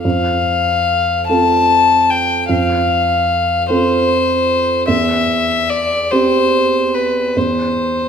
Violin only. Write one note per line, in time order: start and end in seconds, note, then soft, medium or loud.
0.05 1.24 F5 medium
1.28 2.12 A5 medium
2.10 2.50 G5 medium
2.51 3.67 F5 medium
3.70 4.87 C5 medium
4.89 5.71 E5 medium
5.69 6.12 D5 medium
6.11 6.96 C5 medium
6.94 7.38 B4 medium
7.37 8.09 C5 soft